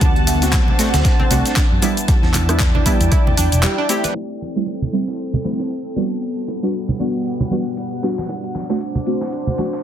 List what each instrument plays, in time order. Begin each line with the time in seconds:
Already playing: ambient pad F#5, analog synth pad F#5, violin section A5
0.01 fingered electric bass D2, ambient pad D4 C5, synth arpeggio sound D4, analog synth pad D4, kick, closed hi-hat, high bongo, cabasa
0.16 closed hi-hat
0.25 synth arpeggio sound A3, analog synth pad C5, snare, closed hi-hat, open hi-hat, high conga, cabasa
0.42 synth stab A3 C4 D4 F#4, snare, closed hi-hat, high bongo, cabasa
0.53 synth arpeggio sound F#3, kick, snare, clap, closed hi-hat, cabasa
0.68 low conga
0.79 synth stab A3 C4 D4 F#4, snare, closed hi-hat, open hi-hat, cabasa
0.94 fingered electric bass D2, synth arpeggio sound A3, snare, closed hi-hat, high bongo, cabasa
1.05 kick, snare, closed hi-hat, cabasa
1.20 synth arpeggio sound C4, low conga
1.30 fingered electric bass C2, synth stab A3 C4 D4 F#4, synth arpeggio sound D4, snare, closed hi-hat, open hi-hat, high bongo, high conga, cabasa
1.46 snare, closed hi-hat, cabasa
1.56 synth arpeggio sound D4, kick, snare, clap, closed hi-hat, cabasa
1.71 fingered electric bass F#2
1.82 synth stab G3 B3 D4 E4, synth arpeggio sound B3, ambient pad E4 D5 G5, analog synth pad E4, closed hi-hat, open hi-hat, high bongo, high conga, cabasa
1.97 closed hi-hat, cabasa
2.08 synth arpeggio sound G3, kick, snare, closed hi-hat, cabasa
2.23 fingered electric bass E2, analog synth pad D5, snare, high bongo
2.28 analog synth pad G5
2.34 clap, closed hi-hat, open hi-hat, high conga, low conga, cabasa
2.49 synth stab G3 B3 D4 E4, synth arpeggio sound B3, cross-stick, closed hi-hat, cabasa
2.60 kick, snare, clap, closed hi-hat, cabasa
2.75 synth arpeggio sound D4, high bongo, low conga
2.85 synth stab G3 B3 D4 E4, synth arpeggio sound E4, kick, closed hi-hat, open hi-hat, high conga, cabasa
3.01 fingered electric bass E2, closed hi-hat, cabasa
3.12 synth arpeggio sound E4, kick, closed hi-hat, high bongo, cabasa
3.27 fingered electric bass E2, low conga
3.37 fingered electric bass E2, synth arpeggio sound D4, closed hi-hat, open hi-hat, high conga, cabasa
3.52 fingered electric bass E1, closed hi-hat, cabasa
3.63 synth arpeggio sound G3, clap, closed hi-hat, high bongo, cabasa
3.78 synth arpeggio sound D4
3.89 synth stab A3 C4 E4 G4, synth arpeggio sound E4, snare, closed hi-hat, open hi-hat, cabasa
4.04 synth arpeggio sound B4, snare, closed hi-hat, high bongo, high conga, cabasa
4.15 ambient pad C4 A4 G5, analog synth pad C4, closed hi-hat, high bongo
4.31 analog synth pad A4
4.41 snare, closed hi-hat, high conga
4.55 synth stab G3 A3 C4 E4, snare, cabasa
4.66 closed hi-hat, high bongo
4.82 low conga
4.92 synth stab G3 A3 C4 E4, closed hi-hat, cabasa
5.08 snare, high bongo
5.19 closed hi-hat
5.33 low conga
5.44 synth stab G3 A3 C4 E4, snare, closed hi-hat, high conga, cabasa
5.59 snare, high bongo
5.70 closed hi-hat
5.96 synth stab G3 B3 D4 F#4, ambient pad G3 B3 F#5, analog synth pad B3, closed hi-hat, high bongo, high conga, cabasa
6.12 cabasa
6.22 closed hi-hat, cabasa
6.40 analog synth pad G3
6.48 closed hi-hat, high bongo, cabasa
6.54 analog synth pad F#5
6.62 synth stab G3 B3 D4 F#4, cabasa
6.74 closed hi-hat, cabasa
6.89 high bongo, low conga
6.99 synth stab G3 B3 D4 F#4, closed hi-hat, high conga, cabasa
7.15 cabasa
7.26 closed hi-hat, cabasa
7.40 high bongo, low conga
7.51 synth stab G3 B3 D4 F#4, closed hi-hat, high conga, cabasa
7.67 cabasa
7.77 closed hi-hat, high bongo, cabasa
8.03 synth stab G3 B3 D4 F#4, snare, closed hi-hat, cabasa
8.18 snare, high conga, cabasa
8.29 ambient pad C4 F#4, analog synth pad D4, closed hi-hat, high bongo, cabasa
8.44 closed hi-hat
8.55 snare, closed hi-hat, high conga, cabasa
8.69 synth stab A3 C4 D4 F#4, analog synth pad C5, snare, high bongo, cabasa
8.81 closed hi-hat, cabasa
8.95 low conga
9.06 synth stab A3 C4 D4 F#4, closed hi-hat, cabasa
9.21 snare, high bongo, cabasa
9.32 closed hi-hat, cabasa
9.47 low conga
9.58 synth stab A3 C4 D4 F#4, snare, closed hi-hat, high bongo, high conga, cabasa
9.73 snare, cabasa